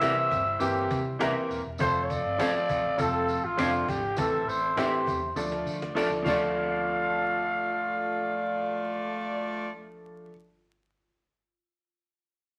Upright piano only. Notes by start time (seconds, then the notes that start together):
0.00 E3 A#3 C4 E4
0.59 E3 A#3 C4 G4
1.19 E3 A#3 C4 A#4
1.79 F3 A3 C4 A4
2.38 F3 A3 C4 A4
2.98 F3 A3 C4 A4
3.57 F3 A3 C4 D4
4.17 E3 A3 C4 A4
4.76 E3 A3 C4 G4
5.36 F3 A3 D4 A4
5.95 F3 A3 D4 A4
6.23 F3 A3
6.27 D4 A4